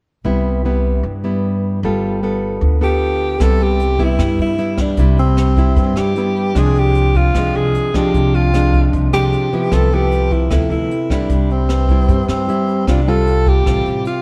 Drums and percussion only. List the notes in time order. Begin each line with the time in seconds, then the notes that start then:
3.40 kick, cross-stick, closed hi-hat
3.60 closed hi-hat
3.80 closed hi-hat
3.99 kick, closed hi-hat
4.19 kick, cross-stick, closed hi-hat
4.39 closed hi-hat
4.58 closed hi-hat
4.78 kick, cross-stick, closed hi-hat
4.97 kick, closed hi-hat
5.18 closed hi-hat
5.37 cross-stick, closed hi-hat
5.57 kick, closed hi-hat
5.76 kick, closed hi-hat
5.96 cross-stick, closed hi-hat
6.15 closed hi-hat
6.36 closed hi-hat
6.55 kick, cross-stick, closed hi-hat
6.76 closed hi-hat
6.95 closed hi-hat
7.15 kick, closed hi-hat
7.35 kick, cross-stick, closed hi-hat
7.55 closed hi-hat
7.75 closed hi-hat
7.94 kick, cross-stick, closed hi-hat
8.14 kick, closed hi-hat
8.34 closed hi-hat
8.54 cross-stick, closed hi-hat
8.73 kick, closed hi-hat
8.93 kick, closed hi-hat
9.13 cross-stick, closed hi-hat
9.33 closed hi-hat
9.53 closed hi-hat
9.72 kick, cross-stick, closed hi-hat
9.91 closed hi-hat
10.11 closed hi-hat
10.31 kick, closed hi-hat
10.51 kick, cross-stick, closed hi-hat
10.71 closed hi-hat
10.91 closed hi-hat
11.10 kick, cross-stick, closed hi-hat
11.30 kick, closed hi-hat
11.50 closed hi-hat
11.69 cross-stick, closed hi-hat
11.89 kick, closed hi-hat
12.09 kick, closed hi-hat
12.28 cross-stick, closed hi-hat
12.48 closed hi-hat
12.68 closed hi-hat
12.87 kick, cross-stick, closed hi-hat
13.07 closed hi-hat
13.27 closed hi-hat
13.46 kick, closed hi-hat
13.66 kick, cross-stick, closed hi-hat
13.86 closed hi-hat
14.05 closed hi-hat